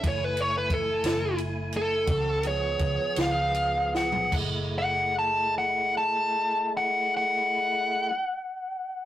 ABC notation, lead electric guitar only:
X:1
M:12/8
L:1/16
Q:3/8=50
K:F#m
V:1 name="Lead electric guitar"
c B c B A4 z2 A4 c4 ^e4 f2 | z2 f2 a2 f2 a4 f2 f8- f2 |]